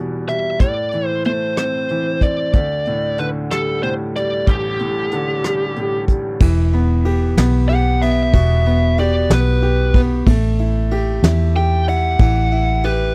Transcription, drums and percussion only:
0.28 closed hi-hat medium
0.60 kick medium
0.60 closed hi-hat medium
0.92 closed hi-hat soft
1.24 closed hi-hat soft
1.57 cross-stick medium
1.57 closed hi-hat medium
1.89 closed hi-hat soft
2.21 kick medium
2.21 closed hi-hat soft
2.53 kick medium
2.53 closed hi-hat medium
2.85 closed hi-hat soft
3.18 closed hi-hat medium
3.51 cross-stick medium
3.51 closed hi-hat medium
3.83 closed hi-hat soft
4.16 closed hi-hat soft
4.47 kick medium
4.47 closed hi-hat medium
4.79 closed hi-hat soft
5.11 closed hi-hat medium
5.44 cross-stick medium
5.44 closed hi-hat medium
5.76 closed hi-hat soft
6.08 kick medium
6.08 closed hi-hat medium
6.40 kick loud
6.40 crash loud
6.73 ride soft
7.05 ride medium
7.37 snare loud
7.37 ride medium
7.69 ride soft
8.02 ride medium
8.34 kick loud
8.34 ride medium
8.65 ride soft
8.98 ride medium
9.30 snare loud
9.30 ride medium
9.62 ride soft
9.94 kick medium
9.94 ride medium
10.27 kick loud
10.27 ride medium
10.59 ride soft
10.91 ride medium
11.23 snare loud
11.23 ride medium
11.55 ride soft
11.88 ride medium
12.19 kick loud
12.19 ride medium
12.51 ride soft
12.83 ride medium

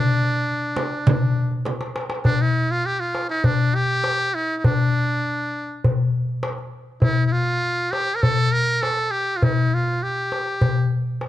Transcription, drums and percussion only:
0.17 darbuka ka soft
0.76 darbuka tek medium
0.76 frame drum medium
0.93 darbuka ka soft
1.07 frame drum loud
1.07 darbuka dum medium
1.37 darbuka ka soft
1.51 darbuka ka soft
1.65 darbuka tek medium
1.65 frame drum medium
1.81 darbuka ka medium
1.96 darbuka tek medium
2.10 darbuka ka medium
2.25 darbuka dum medium
3.15 darbuka tek medium
3.44 darbuka dum medium
3.89 darbuka ka soft
4.04 darbuka tek medium
4.20 darbuka ka soft
4.64 darbuka dum medium
5.84 darbuka dum medium
6.29 darbuka ka soft
6.43 darbuka tek medium
6.58 darbuka ka soft
7.02 darbuka dum medium
7.33 darbuka ka soft
7.93 darbuka tek medium
8.23 darbuka dum medium
8.68 darbuka ka soft
8.83 darbuka tek medium
8.99 darbuka ka soft
9.43 darbuka dum medium
9.88 darbuka ka soft
10.32 darbuka tek medium
10.61 darbuka dum medium
10.92 darbuka ka soft
11.21 darbuka tek medium

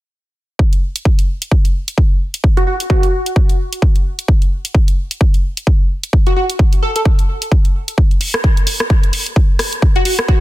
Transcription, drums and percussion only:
0.59 kick loud
0.73 closed hi-hat soft
0.96 closed hi-hat medium
1.05 kick loud
1.19 closed hi-hat medium
1.42 closed hi-hat medium
1.51 kick loud
1.65 closed hi-hat soft
1.88 closed hi-hat medium
1.98 kick loud
2.34 closed hi-hat medium
2.44 kick loud
2.57 closed hi-hat soft
2.80 closed hi-hat medium
2.90 kick loud
3.03 closed hi-hat medium
3.26 closed hi-hat medium
3.36 kick loud
3.49 closed hi-hat soft
3.73 closed hi-hat medium
3.82 kick loud
3.96 closed hi-hat soft
4.19 closed hi-hat medium
4.28 kick loud
4.42 closed hi-hat soft
4.65 closed hi-hat medium
4.75 kick loud
4.88 closed hi-hat soft
5.11 closed hi-hat medium
5.21 kick loud
5.34 closed hi-hat soft
5.57 closed hi-hat medium
5.67 kick loud
6.03 closed hi-hat medium
6.13 kick loud
6.26 closed hi-hat soft
6.50 closed hi-hat medium
6.59 kick loud
6.73 closed hi-hat soft
6.96 closed hi-hat medium
7.05 kick loud
7.19 closed hi-hat soft
7.42 closed hi-hat medium
7.52 kick loud
7.65 closed hi-hat soft
7.88 closed hi-hat medium
7.98 kick loud
8.11 closed hi-hat soft
8.21 open hi-hat loud
8.34 cross-stick medium
8.34 closed hi-hat medium
8.44 kick loud
8.57 closed hi-hat soft
8.67 open hi-hat loud
8.80 cross-stick medium
8.80 closed hi-hat medium
8.90 kick loud
9.03 closed hi-hat soft
9.13 open hi-hat loud
9.26 closed hi-hat medium
9.36 kick loud
9.59 cross-stick medium
9.59 open hi-hat loud
9.72 closed hi-hat medium
9.82 kick loud
9.96 closed hi-hat soft
10.05 open hi-hat loud
10.19 cross-stick medium
10.19 closed hi-hat medium
10.28 kick loud

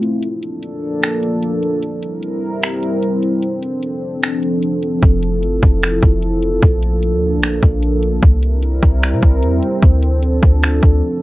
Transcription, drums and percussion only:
0.03 closed hi-hat medium
0.23 closed hi-hat medium
0.43 closed hi-hat medium
0.63 closed hi-hat medium
1.03 finger snap loud
1.03 closed hi-hat medium
1.23 closed hi-hat medium
1.43 closed hi-hat medium
1.63 closed hi-hat medium
1.83 closed hi-hat medium
2.03 closed hi-hat medium
2.23 closed hi-hat medium
2.63 finger snap loud
2.63 closed hi-hat medium
2.83 closed hi-hat medium
3.03 closed hi-hat medium
3.23 closed hi-hat medium
3.43 closed hi-hat medium
3.63 closed hi-hat medium
3.83 closed hi-hat medium
4.23 finger snap loud
4.23 closed hi-hat medium
4.43 closed hi-hat medium
4.63 closed hi-hat medium
4.83 closed hi-hat medium
5.03 kick loud
5.03 closed hi-hat medium
5.23 closed hi-hat medium
5.43 closed hi-hat medium
5.63 kick medium
5.83 finger snap loud
5.83 closed hi-hat medium
6.03 kick loud
6.03 closed hi-hat medium
6.22 closed hi-hat medium
6.43 closed hi-hat medium
6.63 kick loud
6.63 closed hi-hat medium
6.83 closed hi-hat medium
7.03 closed hi-hat medium
7.43 finger snap loud
7.43 closed hi-hat medium
7.63 kick loud
7.63 closed hi-hat medium
7.83 closed hi-hat medium
8.03 closed hi-hat medium
8.23 kick loud
8.23 closed hi-hat medium
8.43 closed hi-hat medium
8.63 closed hi-hat medium
8.83 kick medium
9.03 finger snap loud
9.03 closed hi-hat medium
9.23 kick medium
9.23 closed hi-hat medium
9.43 closed hi-hat medium
9.63 closed hi-hat medium
9.83 kick loud
9.83 closed hi-hat medium
10.03 closed hi-hat medium
10.23 closed hi-hat medium
10.43 kick medium
10.63 finger snap loud
10.63 closed hi-hat medium
10.83 kick loud
10.83 closed hi-hat medium

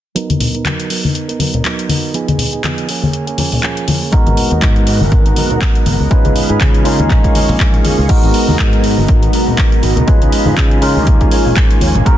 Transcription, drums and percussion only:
0.16 closed hi-hat medium
0.29 closed hi-hat medium
0.29 high conga medium
0.29 maracas soft
0.40 open hi-hat loud
0.40 low conga medium
0.40 maracas loud
0.55 closed hi-hat soft
0.55 maracas soft
0.65 clap loud
0.65 closed hi-hat medium
0.65 high conga medium
0.65 maracas medium
0.80 closed hi-hat medium
0.90 open hi-hat loud
0.90 maracas medium
1.04 high conga medium
1.04 maracas soft
1.15 closed hi-hat medium
1.29 closed hi-hat medium
1.40 open hi-hat loud
1.40 high conga medium
1.40 maracas medium
1.54 closed hi-hat soft
1.54 low conga medium
1.54 maracas soft
1.65 clap loud
1.65 closed hi-hat medium
1.79 closed hi-hat medium
1.89 open hi-hat loud
1.89 high conga medium
1.89 maracas medium
2.14 closed hi-hat medium
2.14 maracas medium
2.28 closed hi-hat medium
2.28 high conga medium
2.28 maracas soft
2.38 open hi-hat loud
2.38 low conga medium
2.38 maracas medium
2.53 closed hi-hat soft
2.53 maracas soft
2.64 clap loud
2.64 closed hi-hat medium
2.64 high conga medium
2.64 maracas soft
2.78 closed hi-hat medium
2.78 maracas soft
2.89 open hi-hat loud
2.89 maracas medium
3.03 high conga loud
3.03 maracas soft
3.13 closed hi-hat medium
3.13 maracas soft
3.27 closed hi-hat soft
3.38 open hi-hat loud
3.38 high conga medium
3.38 maracas medium
3.52 open hi-hat medium
3.52 low conga medium
3.52 maracas soft
3.63 clap loud
3.77 closed hi-hat soft
3.77 maracas soft
3.87 open hi-hat loud
3.87 high conga medium
3.87 maracas medium
4.02 maracas soft
4.12 kick loud
4.12 closed hi-hat medium
4.27 closed hi-hat soft
4.27 high conga loud
4.27 maracas soft
4.37 open hi-hat loud
4.37 low conga medium
4.37 maracas medium
4.51 closed hi-hat soft
4.51 maracas soft
4.62 kick loud
4.62 clap loud
4.62 closed hi-hat medium
4.62 high conga medium
4.62 maracas medium
4.76 closed hi-hat soft
4.87 open hi-hat loud
5.01 high conga loud
5.01 maracas soft
5.12 kick loud
5.12 closed hi-hat medium
5.12 maracas medium
5.26 closed hi-hat soft
5.36 open hi-hat loud
5.36 high conga medium
5.36 maracas medium
5.50 closed hi-hat soft
5.50 low conga medium
5.50 maracas soft
5.61 kick loud
5.61 clap loud
5.61 closed hi-hat medium
5.75 closed hi-hat medium
5.86 open hi-hat loud
5.86 high conga loud
5.86 maracas medium
6.00 maracas soft
6.11 kick loud
6.11 closed hi-hat medium
6.25 closed hi-hat soft
6.25 high conga loud
6.25 maracas soft
6.35 open hi-hat loud
6.35 low conga medium
6.35 maracas loud
6.50 closed hi-hat soft
6.50 maracas soft
6.60 kick loud
6.60 clap loud
6.60 closed hi-hat medium
6.60 high conga medium
6.60 maracas medium
6.74 closed hi-hat soft
6.85 open hi-hat loud
7.00 closed hi-hat soft
7.00 high conga medium
7.00 maracas soft
7.10 kick loud
7.10 clap medium
7.10 closed hi-hat medium
7.24 kick medium
7.24 closed hi-hat soft
7.24 maracas soft
7.35 open hi-hat loud
7.35 high conga medium
7.35 maracas medium
7.49 open hi-hat medium
7.49 low conga medium
7.49 maracas soft
7.60 kick loud
7.60 clap loud
7.60 closed hi-hat medium
7.74 closed hi-hat soft
7.84 open hi-hat loud
7.84 high conga medium
7.84 maracas medium
7.99 maracas soft
8.09 kick loud
8.09 closed hi-hat medium
8.09 crash medium
8.23 closed hi-hat medium
8.34 open hi-hat loud
8.34 maracas loud
8.48 high conga medium
8.48 maracas soft
8.59 kick loud
8.59 clap loud
8.59 closed hi-hat medium
8.73 closed hi-hat medium
8.84 open hi-hat medium
8.98 high conga medium
8.98 maracas soft
9.08 kick loud
9.08 closed hi-hat medium
9.23 closed hi-hat medium
9.33 open hi-hat loud
9.33 maracas loud
9.47 low conga medium
9.47 maracas soft
9.58 kick loud
9.58 clap loud
9.58 closed hi-hat medium
9.58 maracas medium
9.72 closed hi-hat medium
9.83 open hi-hat medium
9.83 maracas medium
9.96 closed hi-hat soft
9.96 low conga loud
9.96 maracas soft
10.08 kick loud
10.08 closed hi-hat medium
10.22 closed hi-hat medium
10.32 open hi-hat loud
10.32 maracas medium
10.45 high conga medium
10.45 maracas soft
10.57 kick loud
10.57 clap loud
10.57 closed hi-hat medium
10.57 maracas medium
10.71 closed hi-hat medium
10.71 maracas soft
10.82 open hi-hat loud
10.96 high conga medium
10.96 maracas soft
11.07 kick loud
11.07 closed hi-hat medium
11.21 kick medium
11.21 closed hi-hat medium
11.31 open hi-hat loud
11.31 maracas loud
11.46 low conga medium
11.46 maracas soft
11.56 kick loud
11.56 clap loud
11.56 closed hi-hat medium
11.70 closed hi-hat medium
11.81 open hi-hat medium
11.81 maracas medium
11.95 closed hi-hat soft
11.95 low conga medium
11.95 maracas soft
12.06 kick loud
12.06 closed hi-hat medium
12.06 maracas soft

